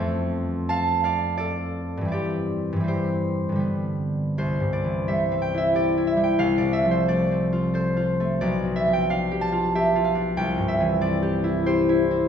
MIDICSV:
0, 0, Header, 1, 2, 480
1, 0, Start_track
1, 0, Key_signature, 0, "major"
1, 0, Tempo, 681818
1, 23, Time_signature, 3, 2, 24, 8
1, 983, Tempo, 744417
1, 2903, Tempo, 695249
1, 3383, Tempo, 666667
1, 5783, Tempo, 653595
1, 8632, End_track
2, 0, Start_track
2, 0, Title_t, "Harp"
2, 0, Program_c, 0, 46
2, 0, Note_on_c, 0, 41, 70
2, 0, Note_on_c, 0, 53, 55
2, 0, Note_on_c, 0, 57, 56
2, 0, Note_on_c, 0, 60, 55
2, 486, Note_on_c, 0, 81, 98
2, 494, Note_on_c, 0, 77, 74
2, 723, Note_off_c, 0, 77, 0
2, 732, Note_on_c, 0, 77, 87
2, 738, Note_on_c, 0, 74, 62
2, 959, Note_off_c, 0, 74, 0
2, 968, Note_on_c, 0, 74, 76
2, 980, Note_on_c, 0, 69, 64
2, 1355, Note_on_c, 0, 43, 53
2, 1380, Note_on_c, 0, 52, 42
2, 1405, Note_on_c, 0, 55, 43
2, 1417, Note_off_c, 0, 60, 0
2, 1424, Note_on_c, 0, 60, 42
2, 1427, Note_off_c, 0, 41, 0
2, 1437, Note_off_c, 0, 53, 0
2, 1440, Note_off_c, 0, 74, 0
2, 1447, Note_on_c, 0, 74, 67
2, 1450, Note_off_c, 0, 57, 0
2, 1459, Note_on_c, 0, 67, 51
2, 1475, Note_off_c, 0, 69, 0
2, 1476, Note_off_c, 0, 81, 0
2, 1477, Note_off_c, 0, 77, 0
2, 1832, Note_off_c, 0, 43, 0
2, 1840, Note_on_c, 0, 43, 52
2, 1856, Note_off_c, 0, 52, 0
2, 1864, Note_on_c, 0, 52, 41
2, 1882, Note_off_c, 0, 55, 0
2, 1889, Note_on_c, 0, 55, 43
2, 1903, Note_off_c, 0, 60, 0
2, 1911, Note_on_c, 0, 60, 43
2, 1935, Note_off_c, 0, 67, 0
2, 1939, Note_on_c, 0, 72, 54
2, 1942, Note_on_c, 0, 67, 43
2, 2325, Note_off_c, 0, 43, 0
2, 2333, Note_on_c, 0, 43, 43
2, 2352, Note_on_c, 0, 50, 38
2, 2368, Note_off_c, 0, 55, 0
2, 2375, Note_on_c, 0, 55, 39
2, 2400, Note_on_c, 0, 59, 37
2, 2409, Note_off_c, 0, 52, 0
2, 2432, Note_off_c, 0, 60, 0
2, 2446, Note_off_c, 0, 72, 0
2, 2874, Note_off_c, 0, 43, 0
2, 2884, Note_off_c, 0, 50, 0
2, 2906, Note_on_c, 0, 36, 60
2, 2909, Note_off_c, 0, 59, 0
2, 2910, Note_on_c, 0, 72, 69
2, 2918, Note_off_c, 0, 74, 0
2, 3060, Note_on_c, 0, 43, 42
2, 3148, Note_on_c, 0, 74, 69
2, 3226, Note_on_c, 0, 52, 46
2, 3385, Note_off_c, 0, 55, 0
2, 3391, Note_on_c, 0, 76, 74
2, 3394, Note_on_c, 0, 55, 46
2, 3555, Note_off_c, 0, 74, 0
2, 3560, Note_on_c, 0, 60, 50
2, 3634, Note_on_c, 0, 79, 76
2, 3723, Note_on_c, 0, 64, 49
2, 3739, Note_off_c, 0, 76, 0
2, 3748, Note_on_c, 0, 76, 66
2, 3863, Note_off_c, 0, 67, 0
2, 3872, Note_on_c, 0, 67, 51
2, 3878, Note_on_c, 0, 74, 74
2, 3950, Note_off_c, 0, 76, 0
2, 4027, Note_off_c, 0, 64, 0
2, 4035, Note_on_c, 0, 64, 48
2, 4104, Note_on_c, 0, 76, 61
2, 4163, Note_off_c, 0, 55, 0
2, 4171, Note_on_c, 0, 55, 51
2, 4214, Note_off_c, 0, 79, 0
2, 4223, Note_on_c, 0, 79, 68
2, 4279, Note_off_c, 0, 74, 0
2, 4324, Note_off_c, 0, 36, 0
2, 4330, Note_on_c, 0, 36, 62
2, 4334, Note_on_c, 0, 77, 83
2, 4358, Note_off_c, 0, 55, 0
2, 4362, Note_off_c, 0, 43, 0
2, 4364, Note_off_c, 0, 76, 0
2, 4365, Note_off_c, 0, 52, 0
2, 4368, Note_off_c, 0, 67, 0
2, 4370, Note_off_c, 0, 64, 0
2, 4428, Note_off_c, 0, 79, 0
2, 4469, Note_on_c, 0, 74, 59
2, 4490, Note_on_c, 0, 48, 42
2, 4578, Note_on_c, 0, 76, 78
2, 4665, Note_on_c, 0, 53, 49
2, 4670, Note_off_c, 0, 74, 0
2, 4699, Note_off_c, 0, 72, 0
2, 4708, Note_on_c, 0, 72, 67
2, 4784, Note_off_c, 0, 76, 0
2, 4830, Note_on_c, 0, 57, 54
2, 4835, Note_on_c, 0, 74, 73
2, 4908, Note_off_c, 0, 72, 0
2, 4989, Note_off_c, 0, 60, 0
2, 4998, Note_on_c, 0, 60, 49
2, 5152, Note_on_c, 0, 65, 54
2, 5304, Note_on_c, 0, 69, 47
2, 5311, Note_on_c, 0, 72, 71
2, 5460, Note_off_c, 0, 65, 0
2, 5468, Note_on_c, 0, 65, 54
2, 5629, Note_off_c, 0, 57, 0
2, 5638, Note_on_c, 0, 57, 49
2, 5645, Note_off_c, 0, 74, 0
2, 5788, Note_on_c, 0, 74, 80
2, 5793, Note_on_c, 0, 35, 62
2, 5795, Note_off_c, 0, 48, 0
2, 5796, Note_off_c, 0, 36, 0
2, 5803, Note_off_c, 0, 69, 0
2, 5807, Note_off_c, 0, 72, 0
2, 5809, Note_off_c, 0, 57, 0
2, 5810, Note_off_c, 0, 60, 0
2, 5962, Note_on_c, 0, 47, 45
2, 6044, Note_on_c, 0, 76, 79
2, 6121, Note_off_c, 0, 53, 0
2, 6130, Note_on_c, 0, 53, 47
2, 6172, Note_on_c, 0, 79, 71
2, 6239, Note_off_c, 0, 76, 0
2, 6285, Note_off_c, 0, 77, 0
2, 6292, Note_on_c, 0, 62, 51
2, 6296, Note_on_c, 0, 77, 77
2, 6364, Note_off_c, 0, 79, 0
2, 6451, Note_on_c, 0, 67, 54
2, 6525, Note_on_c, 0, 81, 87
2, 6597, Note_off_c, 0, 65, 0
2, 6606, Note_on_c, 0, 65, 55
2, 6766, Note_off_c, 0, 67, 0
2, 6774, Note_on_c, 0, 67, 53
2, 6775, Note_on_c, 0, 76, 77
2, 6913, Note_off_c, 0, 65, 0
2, 6922, Note_on_c, 0, 65, 57
2, 6980, Note_off_c, 0, 77, 0
2, 6989, Note_on_c, 0, 77, 71
2, 7058, Note_off_c, 0, 62, 0
2, 7067, Note_on_c, 0, 62, 57
2, 7165, Note_off_c, 0, 76, 0
2, 7227, Note_on_c, 0, 36, 73
2, 7229, Note_on_c, 0, 79, 91
2, 7244, Note_off_c, 0, 62, 0
2, 7245, Note_off_c, 0, 77, 0
2, 7246, Note_off_c, 0, 74, 0
2, 7249, Note_off_c, 0, 35, 0
2, 7251, Note_off_c, 0, 65, 0
2, 7252, Note_off_c, 0, 47, 0
2, 7252, Note_off_c, 0, 81, 0
2, 7256, Note_off_c, 0, 53, 0
2, 7382, Note_on_c, 0, 43, 49
2, 7457, Note_on_c, 0, 76, 84
2, 7546, Note_on_c, 0, 52, 55
2, 7698, Note_on_c, 0, 60, 57
2, 7702, Note_on_c, 0, 74, 84
2, 7846, Note_off_c, 0, 67, 0
2, 7855, Note_on_c, 0, 67, 55
2, 8013, Note_on_c, 0, 64, 61
2, 8172, Note_off_c, 0, 67, 0
2, 8178, Note_on_c, 0, 72, 84
2, 8181, Note_on_c, 0, 67, 53
2, 8336, Note_off_c, 0, 64, 0
2, 8344, Note_on_c, 0, 64, 61
2, 8495, Note_off_c, 0, 60, 0
2, 8504, Note_on_c, 0, 60, 56
2, 8517, Note_off_c, 0, 74, 0
2, 8632, Note_off_c, 0, 36, 0
2, 8632, Note_off_c, 0, 43, 0
2, 8632, Note_off_c, 0, 52, 0
2, 8632, Note_off_c, 0, 60, 0
2, 8632, Note_off_c, 0, 64, 0
2, 8632, Note_off_c, 0, 67, 0
2, 8632, Note_off_c, 0, 72, 0
2, 8632, Note_off_c, 0, 76, 0
2, 8632, Note_off_c, 0, 79, 0
2, 8632, End_track
0, 0, End_of_file